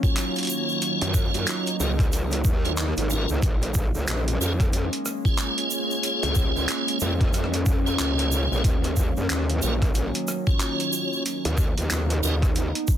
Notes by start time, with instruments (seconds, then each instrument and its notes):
Already playing: ambient pad D#3 F#3 A#3 C#4
0.03 tonewheel organ C#4 F4 F#4 C#5, kick, shaker
0.17 clap, closed hi-hat, shaker
0.36 closed hi-hat, shaker
0.38 closed hi-hat
0.43 closed hi-hat
0.45 closed hi-hat
0.47 closed hi-hat, shaker
0.69 shaker
0.82 ambient pad D#4, closed hi-hat, shaker
1.01 wobble bass F#2, closed hi-hat, shaker
1.14 kick, shaker
1.34 wobble bass F#2, closed hi-hat, shaker
1.47 cross-stick, clap, closed hi-hat, shaker
1.66 closed hi-hat, shaker
1.80 wobble bass C#2, tonewheel organ C#4 F4 F#4 A#4, shaker
1.99 kick, cross-stick, closed hi-hat, shaker
2.12 closed hi-hat, shaker
2.31 closed hi-hat, shaker
2.44 wobble bass D#2, kick, shaker
2.65 tonewheel organ C#4 F4 F#4 C#5, closed hi-hat, shaker
2.77 clap, closed hi-hat, shaker
2.97 wobble bass G#1, closed hi-hat, shaker
3.10 tonewheel organ C#4 F4 F#4 A#4, shaker
3.29 wobble bass C#2, shaker
3.42 wobble bass A#1, ambient pad G#3 A#3 C#4, kick, closed hi-hat, shaker
3.62 closed hi-hat, shaker
3.74 kick, shaker
3.94 wobble bass C#2, shaker
4.07 wobble bass A#1, cross-stick, clap, closed hi-hat, shaker
4.28 closed hi-hat, shaker
4.40 wobble bass F2, tonewheel organ C#4 F4 G#4 A#4, shaker
4.60 kick, cross-stick, closed hi-hat, shaker
4.73 closed hi-hat, shaker
4.93 closed hi-hat, shaker
5.05 cross-stick, shaker
5.25 tonewheel organ C#4 F4 G#4 C#5, kick, shaker
5.37 clap, closed hi-hat, shaker
5.58 closed hi-hat, shaker
5.71 shaker
5.91 shaker
6.03 closed hi-hat, shaker
6.23 wobble bass C#2, closed hi-hat, shaker
6.35 kick, shaker
6.55 wobble bass C#2, shaker
6.69 cross-stick, clap, closed hi-hat, shaker
6.88 closed hi-hat, shaker
7.00 wobble bass F2, tonewheel organ C#4 F4 G#4 A#4, shaker
7.21 kick, cross-stick, closed hi-hat, shaker
7.27 cross-stick
7.33 cross-stick, closed hi-hat, shaker
7.44 cross-stick
7.53 closed hi-hat, shaker
7.66 kick, shaker
7.86 tonewheel organ C#4 F4 G#4 C#5, shaker
7.99 wobble bass C#2, clap, closed hi-hat, shaker
8.18 closed hi-hat, shaker
8.32 shaker
8.52 wobble bass A#1, shaker
8.64 wobble bass D#2, ambient pad D#3 F#3, kick, closed hi-hat, shaker
8.84 closed hi-hat, shaker
8.96 kick, shaker
9.17 wobble bass F#2, shaker
9.30 wobble bass D#2, cross-stick, clap, closed hi-hat, shaker
9.49 closed hi-hat, shaker
9.62 wobble bass A#1, tonewheel organ C#4 F4 F#4 A#4, shaker
9.82 kick, cross-stick, closed hi-hat, shaker
9.95 closed hi-hat, shaker
10.14 closed hi-hat, shaker
10.28 cross-stick, shaker
10.46 tonewheel organ C#4 F4 F#4 C#5, kick, shaker
10.60 clap, closed hi-hat, shaker
10.80 closed hi-hat, shaker
10.93 shaker
11.13 shaker
11.25 ambient pad B3 D#4, closed hi-hat, shaker
11.45 wobble bass D#2, closed hi-hat, shaker
11.58 kick, shaker
11.78 wobble bass D#2, closed hi-hat, shaker
11.90 wobble bass D#2, cross-stick, clap, closed hi-hat, shaker
12.10 closed hi-hat, shaker
12.23 wobble bass D#2, tonewheel organ C#4 D#4 F#4 A#4, shaker
12.42 kick, cross-stick, closed hi-hat, shaker
12.55 closed hi-hat, shaker
12.75 closed hi-hat, shaker
12.88 kick, shaker